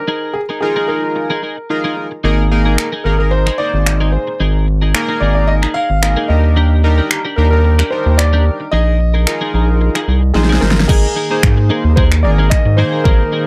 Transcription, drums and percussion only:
2.78 finger snap
3.47 finger snap
3.86 finger snap
4.95 finger snap
5.63 finger snap
6.03 finger snap
7.11 finger snap
7.79 finger snap
8.19 finger snap
9.27 finger snap
9.95 finger snap
10.35 snare
10.44 snare
10.53 snare
10.62 snare
10.71 snare
10.80 snare
10.89 kick, crash
11.43 finger snap, kick
11.97 kick
12.12 finger snap
12.51 finger snap, kick
13.05 kick

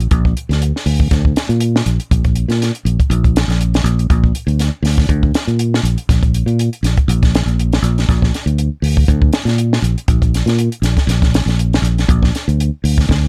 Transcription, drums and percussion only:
0.00 closed hi-hat
0.11 kick, closed hi-hat
0.25 kick
0.37 closed hi-hat
0.51 snare, closed hi-hat
0.62 closed hi-hat
0.76 snare
0.86 open hi-hat
1.00 kick
1.11 kick, snare, closed hi-hat
1.25 kick
1.36 snare, closed hi-hat
1.50 closed hi-hat
1.60 closed hi-hat
1.76 snare
1.86 closed hi-hat
2.00 closed hi-hat
2.11 kick, closed hi-hat
2.24 kick, closed hi-hat
2.35 closed hi-hat
2.50 snare, closed hi-hat
2.62 snare, closed hi-hat
2.75 closed hi-hat
2.86 closed hi-hat
3.00 kick, closed hi-hat
3.11 closed hi-hat
3.24 kick, closed hi-hat
3.36 snare, closed hi-hat
3.50 snare, closed hi-hat
3.61 closed hi-hat
3.74 snare, closed hi-hat
3.86 closed hi-hat
3.99 closed hi-hat
4.10 kick, closed hi-hat
4.24 kick
4.35 closed hi-hat
4.48 closed hi-hat
4.59 snare, closed hi-hat
4.85 snare, open hi-hat
4.98 kick, snare
5.09 kick, closed hi-hat
5.23 kick
5.34 snare, closed hi-hat
5.48 closed hi-hat
5.59 closed hi-hat
5.74 snare
5.85 closed hi-hat
5.98 closed hi-hat
6.09 kick, snare, closed hi-hat
6.23 kick, closed hi-hat
6.34 closed hi-hat
6.48 closed hi-hat
6.59 closed hi-hat
6.73 closed hi-hat
6.84 snare, closed hi-hat
6.97 kick, closed hi-hat
7.09 closed hi-hat
7.23 kick, snare, closed hi-hat
7.35 snare, closed hi-hat
7.48 closed hi-hat
7.59 closed hi-hat
7.73 snare, closed hi-hat
7.84 closed hi-hat
7.98 snare, closed hi-hat
8.09 kick, snare, closed hi-hat
8.22 kick, snare
8.34 snare, closed hi-hat
8.47 closed hi-hat
8.58 closed hi-hat
8.84 open hi-hat
8.97 kick
9.08 kick, closed hi-hat
9.22 kick
9.33 snare, closed hi-hat
9.47 snare, closed hi-hat
9.58 closed hi-hat
9.73 snare
9.84 closed hi-hat
9.98 closed hi-hat
10.08 kick, closed hi-hat
10.22 kick, closed hi-hat
10.34 snare, closed hi-hat
10.47 snare, closed hi-hat
10.58 closed hi-hat
10.72 closed hi-hat
10.83 snare, closed hi-hat
10.97 kick, snare, closed hi-hat
11.09 snare, closed hi-hat
11.22 kick, snare, closed hi-hat
11.34 snare, closed hi-hat
11.48 snare, closed hi-hat
11.59 closed hi-hat
11.73 snare, closed hi-hat
11.85 closed hi-hat
11.98 snare, closed hi-hat
12.09 kick, closed hi-hat
12.23 kick, snare
12.35 snare, closed hi-hat
12.49 closed hi-hat
12.60 closed hi-hat
12.85 open hi-hat
12.98 kick, snare
13.09 kick, snare

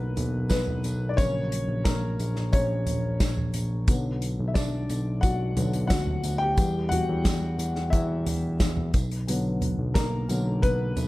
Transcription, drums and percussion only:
0.17 closed hi-hat, floor tom, tambourine
0.49 kick, snare, closed hi-hat, tambourine
0.67 floor tom
0.84 closed hi-hat, tambourine
1.18 kick, closed hi-hat, tambourine
1.52 closed hi-hat
1.85 kick, snare, closed hi-hat, tambourine
2.19 closed hi-hat, tambourine
2.36 snare
2.53 kick, closed hi-hat, tambourine
2.86 closed hi-hat, floor tom, tambourine
3.20 kick, snare, closed hi-hat, tambourine
3.37 floor tom
3.54 closed hi-hat, tambourine
3.88 kick, closed hi-hat, tambourine
4.22 closed hi-hat, tambourine
4.55 kick, snare, closed hi-hat, tambourine
4.89 closed hi-hat, tambourine
5.23 kick, closed hi-hat, tambourine
5.57 closed hi-hat, floor tom, tambourine
5.73 closed hi-hat
5.90 kick, snare, closed hi-hat, tambourine
6.07 floor tom
6.24 closed hi-hat, tambourine
6.58 kick, closed hi-hat, tambourine
6.91 closed hi-hat, floor tom
7.25 kick, snare, closed hi-hat, tambourine
7.59 closed hi-hat, tambourine
7.76 snare
7.93 kick, closed hi-hat, tambourine
8.26 closed hi-hat, floor tom, tambourine
8.60 kick, snare, closed hi-hat, tambourine
8.77 floor tom
8.94 kick, closed hi-hat, tambourine
9.11 closed hi-hat
9.28 closed hi-hat, tambourine
9.62 closed hi-hat, floor tom
9.95 kick, snare, closed hi-hat, tambourine
10.29 closed hi-hat, tambourine
10.63 kick, closed hi-hat, tambourine
10.97 closed hi-hat, floor tom, tambourine

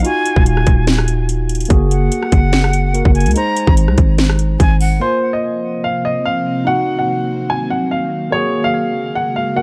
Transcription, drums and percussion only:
0.05 closed hi-hat
0.26 closed hi-hat
0.36 kick
0.46 closed hi-hat
0.57 cross-stick
0.67 kick, closed hi-hat
0.87 snare, closed hi-hat
0.98 cross-stick
1.08 closed hi-hat
1.29 closed hi-hat
1.49 closed hi-hat, open hi-hat
1.55 closed hi-hat
1.60 closed hi-hat
1.65 closed hi-hat
1.70 kick, closed hi-hat
1.91 closed hi-hat
2.12 closed hi-hat
2.23 cross-stick
2.32 kick, closed hi-hat
2.53 snare, closed hi-hat
2.64 cross-stick
2.73 closed hi-hat
2.94 closed hi-hat
3.05 kick
3.15 closed hi-hat
3.20 closed hi-hat
3.26 closed hi-hat
3.31 closed hi-hat
3.36 closed hi-hat
3.57 closed hi-hat
3.67 kick
3.77 closed hi-hat
3.88 cross-stick
3.98 kick, closed hi-hat
4.18 snare, closed hi-hat
4.30 cross-stick
4.39 closed hi-hat
4.60 kick, closed hi-hat
4.81 open hi-hat

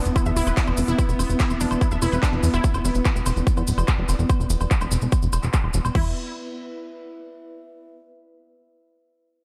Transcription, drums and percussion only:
0.05 closed hi-hat, cabasa
0.16 kick, closed hi-hat, cabasa, high woodblock
0.26 closed hi-hat, cabasa
0.36 open hi-hat, cabasa
0.47 closed hi-hat, cabasa, high woodblock
0.57 kick, clap, closed hi-hat, cabasa
0.68 closed hi-hat, high woodblock
0.77 open hi-hat, cabasa
0.88 closed hi-hat, cabasa
0.99 kick, closed hi-hat, cabasa, high woodblock
1.09 closed hi-hat, cabasa
1.19 open hi-hat, cabasa, high woodblock
1.30 closed hi-hat, cabasa
1.39 kick, clap, closed hi-hat, cabasa
1.50 cabasa, high woodblock
1.60 open hi-hat, cabasa
1.71 closed hi-hat, cabasa, high woodblock
1.81 kick, closed hi-hat, cabasa
1.91 closed hi-hat, cabasa
2.02 open hi-hat, cabasa, high woodblock
2.12 closed hi-hat, cabasa
2.23 kick, clap, closed hi-hat, cabasa, high woodblock
2.33 closed hi-hat
2.43 open hi-hat, cabasa
2.54 closed hi-hat, cabasa, high woodblock
2.64 kick, closed hi-hat, cabasa
2.74 closed hi-hat, cabasa, high woodblock
2.85 open hi-hat, cabasa
2.95 closed hi-hat, cabasa
3.05 kick, clap, closed hi-hat, cabasa, high woodblock
3.16 cabasa
3.26 open hi-hat, cabasa, high woodblock
3.36 closed hi-hat, cabasa
3.47 kick, closed hi-hat, cabasa
3.57 closed hi-hat, cabasa, high woodblock
3.67 open hi-hat, cabasa
3.78 closed hi-hat, cabasa, high woodblock
3.88 kick, clap, closed hi-hat, cabasa
3.99 closed hi-hat
4.09 open hi-hat, cabasa, high woodblock
4.19 closed hi-hat, cabasa
4.29 kick, closed hi-hat, cabasa, high woodblock
4.40 closed hi-hat, cabasa
4.50 open hi-hat, cabasa
4.61 closed hi-hat, cabasa, high woodblock
4.71 kick, clap, cabasa
4.81 cabasa, high woodblock
4.91 open hi-hat, cabasa
5.02 closed hi-hat, cabasa
5.12 kick, cabasa, high woodblock
5.22 closed hi-hat, cabasa
5.33 open hi-hat, cabasa, high woodblock
5.43 clap, closed hi-hat, cabasa
5.53 kick, clap, cabasa
5.64 closed hi-hat, high woodblock
5.74 open hi-hat, cabasa
5.85 closed hi-hat, cabasa, high woodblock
5.95 kick, crash

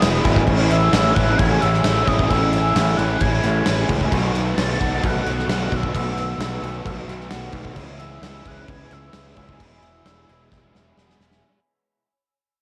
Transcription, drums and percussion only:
0.02 snare, crash
0.25 kick, crash
0.36 kick
0.47 kick, crash
0.71 crash
0.93 snare, crash
1.16 kick, crash
1.39 kick, crash
1.62 crash
1.74 snare
1.84 snare, crash
2.07 kick, crash
2.19 kick
2.30 kick, crash
2.53 crash
2.76 snare, crash
2.99 crash
3.20 kick, crash
3.44 snare, crash
3.66 snare, crash
3.89 kick, crash
4.01 kick
4.12 kick, crash
4.35 crash
4.58 snare, crash
4.81 kick, crash
5.03 kick, crash
5.26 crash
5.39 snare
5.49 snare, crash
5.72 kick, crash
5.83 kick
5.95 kick, crash
6.18 crash
6.40 snare, crash
6.63 crash
6.86 kick, crash
7.09 snare, crash
7.21 snare
7.30 snare, crash
7.52 kick, crash
7.65 kick
7.76 kick, crash
7.99 crash
8.23 snare, crash
8.46 kick, crash
8.68 kick, crash
8.91 snare, crash
9.13 snare, crash
9.36 kick, crash
9.49 kick
9.60 kick, crash
9.83 crash
10.06 snare, crash
10.29 crash
10.52 kick, snare
10.75 snare
10.98 snare
11.10 snare
11.20 snare
11.32 snare

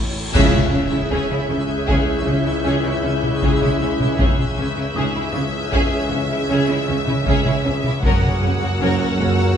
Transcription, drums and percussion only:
0.35 concert bass drum, taiko, crash
0.54 taiko mid
1.89 taiko
3.23 taiko mid
3.42 taiko
3.62 taiko mid
4.00 taiko mid
4.19 taiko
4.39 taiko mid
5.73 taiko
7.07 taiko mid
7.26 taiko
7.45 taiko mid
7.84 taiko mid
8.03 taiko
8.22 taiko mid

